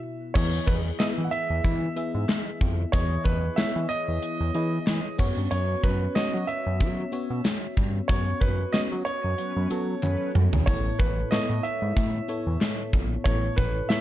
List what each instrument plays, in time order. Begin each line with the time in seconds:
Already playing: fm electric piano B3 E4 F#4 E5
0.34 analog synth bass E2, fm electric piano E3 B3 E4 G#4 D#5, grand piano C#5, kick, crash
0.66 analog synth bass E2, grand piano B4, kick, closed hi-hat
0.99 analog synth bass E3, fm electric piano B3 E4 G#4 E5, grand piano D#5, snare, clap, closed hi-hat, tambourine
1.18 analog synth bass E3
1.24 grand piano F#5
1.31 grand piano E5, closed hi-hat
1.50 analog synth bass E2
1.64 analog synth bass E3, kick, closed hi-hat
1.96 fm electric piano B3 E4 G#4 E5, closed hi-hat
2.14 analog synth bass G#2
2.29 snare, clap, closed hi-hat, tambourine
2.61 analog synth bass F2, kick, closed hi-hat
2.92 analog synth bass E2, fm electric piano E3 B3 E4 G#4 D#5, grand piano C#5, kick, closed hi-hat
3.24 analog synth bass E2, grand piano B4, kick, closed hi-hat
3.56 analog synth bass E3, fm electric piano B3 E4 G#4 C#5, grand piano E5, snare, clap, closed hi-hat, tambourine
3.76 analog synth bass E3
3.89 grand piano D#5, closed hi-hat
4.08 analog synth bass E2
4.22 closed hi-hat
4.40 analog synth bass E2
4.54 analog synth bass E3, fm electric piano B3 E4 G#4 D#5, closed hi-hat
4.87 analog synth bass E3, snare, clap, closed hi-hat, tambourine
5.18 analog synth bass F#2, fm electric piano B3 C#4 F#4 C#5, kick, crash
5.37 analog synth bass G2
5.51 analog synth bass F#2, grand piano C#5, closed hi-hat
5.83 analog synth bass F#2, grand piano B4, kick, closed hi-hat
6.15 analog synth bass F#3, fm electric piano B3 C#4 F#4 C#5, grand piano D#5, snare, clap, closed hi-hat, tambourine
6.34 analog synth bass F#3
6.47 grand piano E5, closed hi-hat
6.66 analog synth bass F#2
6.80 analog synth bass F#3, kick, closed hi-hat
7.12 fm electric piano B3 C#4 F#4 C#5, closed hi-hat
7.30 analog synth bass B2
7.45 snare, clap, closed hi-hat, tambourine
7.77 analog synth bass G2, kick, closed hi-hat
8.08 analog synth bass F#2, fm electric piano B3 C#4 F#4 C#5, grand piano C#5, kick, closed hi-hat
8.40 analog synth bass F#2, grand piano B4, kick, closed hi-hat
8.73 analog synth bass F#3, fm electric piano B3 C#4 F#4 C#5, grand piano D#5, snare, clap, closed hi-hat, tambourine
8.92 analog synth bass F#3
9.05 grand piano C#5, closed hi-hat
9.24 analog synth bass F#2
9.38 analog polysynth F#3 C#4 B4, closed hi-hat
9.56 analog synth bass F#2, analog polysynth F#3 C#4 B4
9.70 analog synth bass F#3, fm electric piano B3 C#4 F#4 A4, closed hi-hat
10.03 analog synth bass F#2, analog polysynth F#3 C#4 B4, clap, high tom
10.35 analog synth bass F#2, mid tom
10.53 analog synth bass E2, floor tom
10.66 analog synth bass A1, fm electric piano A2 B3 E4 A4 C#5, grand piano C#5, kick, splash
10.99 analog synth bass A1, grand piano B4, kick, closed hi-hat
11.31 analog synth bass A2, fm electric piano B3 E4 A4 C#5, grand piano D#5, snare, clap, closed hi-hat, tambourine
11.49 analog synth bass A2
11.63 grand piano E5, closed hi-hat
11.82 analog synth bass G#2
11.97 analog synth bass A2, kick, closed hi-hat
12.28 fm electric piano B3 E4 A4 C#5, closed hi-hat
12.46 analog synth bass E2
12.61 snare, clap, closed hi-hat, tambourine
12.93 analog synth bass A#1, kick, closed hi-hat
13.24 analog synth bass A1, fm electric piano A2 B3 E4 A4 C#5, grand piano C#5, kick, closed hi-hat
13.56 analog synth bass A1, grand piano B4, kick, closed hi-hat
13.89 analog synth bass A2, fm electric piano B3 E4 A4 C#5, grand piano E5, snare, clap, closed hi-hat, tambourine